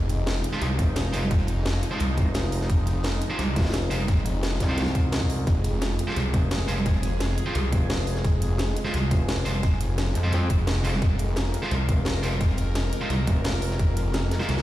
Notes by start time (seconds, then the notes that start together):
Already playing: F1 F3 G#3 D#4
0.09 closed hi-hat
0.27 snare, closed hi-hat
0.44 closed hi-hat
0.52 G#3 F4 G4 C5, snare
0.62 C2, closed hi-hat
0.79 F1, kick, closed hi-hat
0.96 snare, closed hi-hat
1.13 G#3 F4 G4 C5, closed hi-hat, open hi-hat
1.23 closed hi-hat
1.31 F1, kick, closed hi-hat
1.39 closed hi-hat
1.47 closed hi-hat
1.65 snare, closed hi-hat
1.83 closed hi-hat
1.91 G#3 F4 G4 C5
1.99 C2, closed hi-hat
2.17 F1, kick, closed hi-hat
2.34 snare, closed hi-hat
2.43 snare
2.52 closed hi-hat, open hi-hat
2.61 snare
2.70 F1, kick, closed hi-hat
2.87 closed hi-hat
3.04 snare, closed hi-hat
3.22 closed hi-hat
3.30 G#3 F4 G4 C5
3.39 C2, closed hi-hat
3.56 F1, kick, snare, closed hi-hat
3.60 snare, closed hi-hat
3.65 snare, closed hi-hat
3.69 snare, closed hi-hat
3.74 snare, closed hi-hat
3.90 G#3 F4 G4 C5, closed hi-hat, open hi-hat
4.00 closed hi-hat
4.08 F1, kick, closed hi-hat
4.17 closed hi-hat
4.25 closed hi-hat
4.43 snare, closed hi-hat
4.52 snare
4.60 C2, kick, snare, closed hi-hat
4.69 G#3 F4 G4 C5
4.78 snare, closed hi-hat
4.82 snare, closed hi-hat
4.86 snare, closed hi-hat
4.95 kick, closed hi-hat
5.12 snare, closed hi-hat
5.21 kick, snare
5.30 open hi-hat
5.47 F1 G#4, kick, closed hi-hat
5.64 closed hi-hat
5.82 snare, closed hi-hat
5.99 closed hi-hat
6.07 G#3 F4 G4 C5, snare
6.16 C2, closed hi-hat
6.33 F1, kick, closed hi-hat
6.51 snare, closed hi-hat
6.68 G#3 F4 G4 C5, closed hi-hat, open hi-hat
6.77 closed hi-hat
6.85 F1, kick, closed hi-hat
7.03 closed hi-hat
7.20 snare, closed hi-hat
7.38 closed hi-hat
7.46 G#3 F4 G4 C5
7.55 C2, closed hi-hat
7.72 F1, kick, closed hi-hat
7.90 snare, closed hi-hat
7.98 snare
8.07 closed hi-hat, open hi-hat
8.15 snare
8.24 F1, kick, closed hi-hat
8.42 closed hi-hat
8.58 snare, closed hi-hat
8.76 closed hi-hat
8.85 G#3 F4 G4 C5, snare
8.94 C2, closed hi-hat
9.11 F1, kick, closed hi-hat
9.29 snare, closed hi-hat
9.45 G#3 F4 G4 C5, closed hi-hat, open hi-hat
9.54 closed hi-hat
9.63 F1, kick, closed hi-hat
9.72 closed hi-hat
9.81 closed hi-hat
9.98 snare, closed hi-hat
10.15 F2, closed hi-hat
10.23 G#3 F4 G4 C5
10.32 F2, closed hi-hat
10.50 F1, kick, closed hi-hat
10.67 snare, closed hi-hat
10.76 snare
10.84 G#3 F4 G4 C5, closed hi-hat, open hi-hat
10.93 snare
11.02 F1 A#4, kick, closed hi-hat
11.19 closed hi-hat
11.36 snare, closed hi-hat
11.54 closed hi-hat
11.62 G#3 F4 G4 C5, snare
11.71 C2, closed hi-hat
11.89 F1, kick, closed hi-hat
12.05 snare, closed hi-hat
12.23 G#3 F4 G4 C5, closed hi-hat, open hi-hat
12.32 closed hi-hat
12.41 F1, kick, closed hi-hat
12.50 closed hi-hat
12.57 closed hi-hat
12.75 snare, closed hi-hat
12.92 closed hi-hat
13.01 G#3 F4 G4 C5
13.10 C2, closed hi-hat
13.27 F1, kick, closed hi-hat
13.44 snare, closed hi-hat
13.54 snare
13.62 closed hi-hat, open hi-hat
13.71 snare
13.79 F1, kick, closed hi-hat
13.97 closed hi-hat
14.13 snare, closed hi-hat
14.31 snare, closed hi-hat
14.40 G#3 F4 G4 C5, snare, closed hi-hat
14.48 C2, snare, closed hi-hat
14.57 snare, closed hi-hat